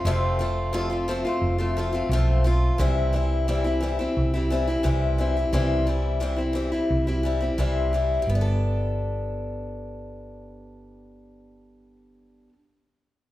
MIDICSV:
0, 0, Header, 1, 3, 480
1, 0, Start_track
1, 0, Key_signature, 1, "major"
1, 0, Tempo, 685714
1, 35, Time_signature, 4, 2, 24, 8
1, 9323, End_track
2, 0, Start_track
2, 0, Title_t, "Steel-string acoustic guitar"
2, 0, Program_c, 0, 25
2, 36, Note_on_c, 0, 41, 84
2, 47, Note_on_c, 0, 48, 85
2, 47, Note_on_c, 0, 57, 94
2, 48, Note_on_c, 0, 60, 95
2, 50, Note_on_c, 0, 53, 82
2, 54, Note_on_c, 0, 65, 98
2, 264, Note_off_c, 0, 53, 0
2, 273, Note_on_c, 0, 53, 58
2, 275, Note_off_c, 0, 41, 0
2, 276, Note_off_c, 0, 57, 0
2, 276, Note_off_c, 0, 60, 0
2, 280, Note_off_c, 0, 48, 0
2, 281, Note_off_c, 0, 65, 0
2, 284, Note_on_c, 0, 57, 60
2, 284, Note_on_c, 0, 60, 64
2, 290, Note_on_c, 0, 65, 67
2, 508, Note_off_c, 0, 53, 0
2, 509, Note_on_c, 0, 41, 70
2, 510, Note_off_c, 0, 57, 0
2, 511, Note_off_c, 0, 60, 0
2, 511, Note_off_c, 0, 65, 0
2, 511, Note_on_c, 0, 48, 78
2, 517, Note_on_c, 0, 53, 75
2, 518, Note_on_c, 0, 57, 73
2, 519, Note_on_c, 0, 60, 85
2, 519, Note_on_c, 0, 65, 80
2, 619, Note_off_c, 0, 65, 0
2, 627, Note_on_c, 0, 65, 52
2, 628, Note_off_c, 0, 60, 0
2, 631, Note_off_c, 0, 41, 0
2, 632, Note_off_c, 0, 48, 0
2, 634, Note_off_c, 0, 57, 0
2, 635, Note_off_c, 0, 53, 0
2, 637, Note_on_c, 0, 60, 49
2, 642, Note_on_c, 0, 57, 47
2, 648, Note_on_c, 0, 53, 40
2, 746, Note_off_c, 0, 53, 0
2, 750, Note_off_c, 0, 65, 0
2, 753, Note_off_c, 0, 57, 0
2, 755, Note_off_c, 0, 60, 0
2, 755, Note_on_c, 0, 53, 74
2, 761, Note_on_c, 0, 57, 77
2, 764, Note_on_c, 0, 60, 74
2, 776, Note_on_c, 0, 65, 73
2, 864, Note_off_c, 0, 65, 0
2, 872, Note_on_c, 0, 65, 50
2, 873, Note_off_c, 0, 53, 0
2, 877, Note_off_c, 0, 57, 0
2, 878, Note_off_c, 0, 60, 0
2, 885, Note_on_c, 0, 57, 49
2, 886, Note_on_c, 0, 60, 47
2, 895, Note_on_c, 0, 53, 41
2, 1100, Note_off_c, 0, 65, 0
2, 1108, Note_off_c, 0, 60, 0
2, 1109, Note_on_c, 0, 65, 59
2, 1113, Note_off_c, 0, 57, 0
2, 1115, Note_off_c, 0, 53, 0
2, 1117, Note_on_c, 0, 60, 56
2, 1121, Note_on_c, 0, 57, 55
2, 1124, Note_on_c, 0, 53, 48
2, 1228, Note_off_c, 0, 53, 0
2, 1230, Note_off_c, 0, 65, 0
2, 1234, Note_off_c, 0, 60, 0
2, 1236, Note_off_c, 0, 57, 0
2, 1236, Note_on_c, 0, 53, 65
2, 1245, Note_on_c, 0, 57, 59
2, 1249, Note_on_c, 0, 60, 63
2, 1254, Note_on_c, 0, 65, 68
2, 1339, Note_off_c, 0, 65, 0
2, 1348, Note_on_c, 0, 65, 59
2, 1351, Note_off_c, 0, 60, 0
2, 1354, Note_off_c, 0, 53, 0
2, 1354, Note_off_c, 0, 57, 0
2, 1359, Note_on_c, 0, 60, 50
2, 1363, Note_on_c, 0, 57, 55
2, 1369, Note_on_c, 0, 53, 49
2, 1469, Note_off_c, 0, 65, 0
2, 1475, Note_off_c, 0, 60, 0
2, 1477, Note_off_c, 0, 57, 0
2, 1480, Note_off_c, 0, 53, 0
2, 1480, Note_on_c, 0, 41, 85
2, 1491, Note_on_c, 0, 57, 87
2, 1492, Note_on_c, 0, 53, 76
2, 1492, Note_on_c, 0, 60, 79
2, 1497, Note_on_c, 0, 65, 78
2, 1701, Note_off_c, 0, 53, 0
2, 1710, Note_off_c, 0, 57, 0
2, 1710, Note_on_c, 0, 53, 68
2, 1713, Note_off_c, 0, 60, 0
2, 1715, Note_off_c, 0, 41, 0
2, 1718, Note_off_c, 0, 65, 0
2, 1719, Note_on_c, 0, 57, 65
2, 1721, Note_on_c, 0, 60, 59
2, 1727, Note_on_c, 0, 65, 74
2, 1947, Note_on_c, 0, 48, 82
2, 1950, Note_off_c, 0, 53, 0
2, 1952, Note_off_c, 0, 57, 0
2, 1953, Note_off_c, 0, 60, 0
2, 1955, Note_on_c, 0, 55, 85
2, 1957, Note_on_c, 0, 52, 83
2, 1958, Note_off_c, 0, 65, 0
2, 1961, Note_on_c, 0, 60, 94
2, 1966, Note_on_c, 0, 64, 97
2, 2180, Note_off_c, 0, 52, 0
2, 2184, Note_off_c, 0, 55, 0
2, 2188, Note_off_c, 0, 48, 0
2, 2188, Note_on_c, 0, 52, 61
2, 2190, Note_off_c, 0, 60, 0
2, 2193, Note_on_c, 0, 55, 57
2, 2197, Note_off_c, 0, 64, 0
2, 2199, Note_on_c, 0, 60, 59
2, 2211, Note_on_c, 0, 64, 66
2, 2429, Note_off_c, 0, 52, 0
2, 2431, Note_off_c, 0, 55, 0
2, 2433, Note_off_c, 0, 64, 0
2, 2434, Note_off_c, 0, 60, 0
2, 2435, Note_on_c, 0, 48, 69
2, 2436, Note_on_c, 0, 52, 70
2, 2441, Note_on_c, 0, 64, 80
2, 2442, Note_on_c, 0, 55, 72
2, 2442, Note_on_c, 0, 60, 74
2, 2541, Note_off_c, 0, 64, 0
2, 2550, Note_off_c, 0, 60, 0
2, 2550, Note_on_c, 0, 64, 57
2, 2552, Note_off_c, 0, 48, 0
2, 2553, Note_off_c, 0, 52, 0
2, 2556, Note_off_c, 0, 55, 0
2, 2558, Note_on_c, 0, 60, 43
2, 2567, Note_on_c, 0, 55, 42
2, 2664, Note_on_c, 0, 52, 66
2, 2669, Note_off_c, 0, 55, 0
2, 2669, Note_off_c, 0, 64, 0
2, 2673, Note_off_c, 0, 60, 0
2, 2678, Note_on_c, 0, 55, 67
2, 2682, Note_on_c, 0, 60, 71
2, 2684, Note_on_c, 0, 64, 69
2, 2783, Note_off_c, 0, 64, 0
2, 2786, Note_off_c, 0, 52, 0
2, 2792, Note_on_c, 0, 64, 53
2, 2793, Note_off_c, 0, 55, 0
2, 2795, Note_off_c, 0, 60, 0
2, 2804, Note_on_c, 0, 60, 54
2, 2812, Note_on_c, 0, 55, 36
2, 3027, Note_off_c, 0, 64, 0
2, 3035, Note_on_c, 0, 64, 57
2, 3036, Note_off_c, 0, 60, 0
2, 3040, Note_off_c, 0, 55, 0
2, 3048, Note_on_c, 0, 60, 56
2, 3057, Note_on_c, 0, 55, 49
2, 3152, Note_off_c, 0, 64, 0
2, 3153, Note_off_c, 0, 55, 0
2, 3153, Note_on_c, 0, 52, 66
2, 3158, Note_off_c, 0, 60, 0
2, 3162, Note_on_c, 0, 55, 63
2, 3166, Note_on_c, 0, 60, 71
2, 3176, Note_on_c, 0, 64, 71
2, 3264, Note_off_c, 0, 64, 0
2, 3270, Note_off_c, 0, 52, 0
2, 3272, Note_on_c, 0, 64, 60
2, 3275, Note_off_c, 0, 55, 0
2, 3277, Note_off_c, 0, 60, 0
2, 3285, Note_on_c, 0, 60, 49
2, 3291, Note_on_c, 0, 55, 49
2, 3380, Note_off_c, 0, 55, 0
2, 3382, Note_on_c, 0, 48, 83
2, 3387, Note_off_c, 0, 60, 0
2, 3388, Note_on_c, 0, 52, 87
2, 3388, Note_on_c, 0, 55, 85
2, 3390, Note_off_c, 0, 64, 0
2, 3395, Note_on_c, 0, 60, 76
2, 3401, Note_on_c, 0, 64, 82
2, 3620, Note_off_c, 0, 52, 0
2, 3625, Note_off_c, 0, 48, 0
2, 3625, Note_off_c, 0, 55, 0
2, 3628, Note_on_c, 0, 52, 65
2, 3631, Note_off_c, 0, 60, 0
2, 3633, Note_on_c, 0, 55, 58
2, 3634, Note_off_c, 0, 64, 0
2, 3641, Note_on_c, 0, 60, 60
2, 3645, Note_on_c, 0, 64, 67
2, 3747, Note_off_c, 0, 64, 0
2, 3748, Note_off_c, 0, 52, 0
2, 3750, Note_off_c, 0, 55, 0
2, 3754, Note_off_c, 0, 60, 0
2, 3756, Note_on_c, 0, 64, 47
2, 3763, Note_on_c, 0, 60, 40
2, 3773, Note_on_c, 0, 55, 41
2, 3868, Note_on_c, 0, 48, 75
2, 3869, Note_off_c, 0, 55, 0
2, 3871, Note_off_c, 0, 60, 0
2, 3872, Note_off_c, 0, 64, 0
2, 3873, Note_on_c, 0, 52, 89
2, 3877, Note_on_c, 0, 55, 86
2, 3879, Note_on_c, 0, 60, 86
2, 3885, Note_on_c, 0, 64, 80
2, 4098, Note_off_c, 0, 52, 0
2, 4100, Note_off_c, 0, 55, 0
2, 4106, Note_off_c, 0, 60, 0
2, 4106, Note_on_c, 0, 52, 55
2, 4108, Note_off_c, 0, 48, 0
2, 4108, Note_on_c, 0, 55, 59
2, 4115, Note_on_c, 0, 60, 54
2, 4116, Note_off_c, 0, 64, 0
2, 4123, Note_on_c, 0, 64, 61
2, 4336, Note_off_c, 0, 52, 0
2, 4341, Note_off_c, 0, 55, 0
2, 4341, Note_on_c, 0, 48, 66
2, 4345, Note_on_c, 0, 52, 71
2, 4347, Note_off_c, 0, 64, 0
2, 4349, Note_off_c, 0, 60, 0
2, 4349, Note_on_c, 0, 55, 61
2, 4355, Note_on_c, 0, 64, 73
2, 4357, Note_on_c, 0, 60, 84
2, 4446, Note_off_c, 0, 64, 0
2, 4455, Note_on_c, 0, 64, 46
2, 4459, Note_off_c, 0, 60, 0
2, 4464, Note_off_c, 0, 48, 0
2, 4466, Note_off_c, 0, 52, 0
2, 4467, Note_on_c, 0, 60, 46
2, 4468, Note_off_c, 0, 55, 0
2, 4481, Note_on_c, 0, 55, 38
2, 4571, Note_on_c, 0, 52, 65
2, 4576, Note_off_c, 0, 55, 0
2, 4577, Note_off_c, 0, 60, 0
2, 4581, Note_off_c, 0, 64, 0
2, 4585, Note_on_c, 0, 55, 67
2, 4586, Note_on_c, 0, 60, 72
2, 4595, Note_on_c, 0, 64, 76
2, 4693, Note_off_c, 0, 64, 0
2, 4699, Note_off_c, 0, 52, 0
2, 4702, Note_on_c, 0, 64, 51
2, 4703, Note_off_c, 0, 60, 0
2, 4706, Note_off_c, 0, 55, 0
2, 4711, Note_on_c, 0, 60, 45
2, 4719, Note_on_c, 0, 55, 41
2, 4941, Note_off_c, 0, 64, 0
2, 4947, Note_off_c, 0, 60, 0
2, 4949, Note_on_c, 0, 64, 55
2, 4953, Note_off_c, 0, 55, 0
2, 4956, Note_on_c, 0, 60, 46
2, 4960, Note_on_c, 0, 55, 49
2, 5062, Note_on_c, 0, 52, 59
2, 5066, Note_off_c, 0, 55, 0
2, 5068, Note_off_c, 0, 64, 0
2, 5071, Note_off_c, 0, 60, 0
2, 5075, Note_on_c, 0, 55, 62
2, 5082, Note_on_c, 0, 60, 58
2, 5085, Note_on_c, 0, 64, 70
2, 5175, Note_off_c, 0, 64, 0
2, 5184, Note_off_c, 0, 52, 0
2, 5184, Note_on_c, 0, 64, 58
2, 5187, Note_off_c, 0, 60, 0
2, 5191, Note_off_c, 0, 55, 0
2, 5195, Note_on_c, 0, 60, 47
2, 5206, Note_on_c, 0, 55, 38
2, 5305, Note_off_c, 0, 55, 0
2, 5305, Note_off_c, 0, 64, 0
2, 5305, Note_on_c, 0, 48, 73
2, 5308, Note_on_c, 0, 52, 70
2, 5311, Note_off_c, 0, 60, 0
2, 5313, Note_on_c, 0, 55, 80
2, 5316, Note_on_c, 0, 64, 81
2, 5318, Note_on_c, 0, 60, 81
2, 5542, Note_off_c, 0, 52, 0
2, 5546, Note_off_c, 0, 48, 0
2, 5550, Note_off_c, 0, 55, 0
2, 5550, Note_on_c, 0, 52, 55
2, 5552, Note_off_c, 0, 60, 0
2, 5552, Note_off_c, 0, 64, 0
2, 5558, Note_on_c, 0, 55, 58
2, 5561, Note_on_c, 0, 60, 62
2, 5566, Note_on_c, 0, 64, 65
2, 5746, Note_off_c, 0, 55, 0
2, 5752, Note_off_c, 0, 52, 0
2, 5755, Note_on_c, 0, 55, 71
2, 5794, Note_off_c, 0, 60, 0
2, 5797, Note_off_c, 0, 64, 0
2, 5806, Note_on_c, 0, 59, 83
2, 5846, Note_on_c, 0, 62, 78
2, 5888, Note_on_c, 0, 69, 82
2, 8742, Note_off_c, 0, 55, 0
2, 8768, Note_off_c, 0, 59, 0
2, 8788, Note_off_c, 0, 62, 0
2, 8808, Note_off_c, 0, 69, 0
2, 9323, End_track
3, 0, Start_track
3, 0, Title_t, "Fingered electric bass"
3, 0, Program_c, 1, 33
3, 32, Note_on_c, 1, 29, 94
3, 865, Note_off_c, 1, 29, 0
3, 989, Note_on_c, 1, 29, 77
3, 1407, Note_off_c, 1, 29, 0
3, 1465, Note_on_c, 1, 35, 77
3, 1884, Note_off_c, 1, 35, 0
3, 1956, Note_on_c, 1, 36, 108
3, 2786, Note_off_c, 1, 36, 0
3, 2917, Note_on_c, 1, 36, 77
3, 3330, Note_off_c, 1, 36, 0
3, 3394, Note_on_c, 1, 36, 84
3, 3808, Note_off_c, 1, 36, 0
3, 3869, Note_on_c, 1, 36, 94
3, 4702, Note_off_c, 1, 36, 0
3, 4833, Note_on_c, 1, 36, 73
3, 5247, Note_off_c, 1, 36, 0
3, 5309, Note_on_c, 1, 36, 71
3, 5725, Note_off_c, 1, 36, 0
3, 5789, Note_on_c, 1, 31, 82
3, 8731, Note_off_c, 1, 31, 0
3, 9323, End_track
0, 0, End_of_file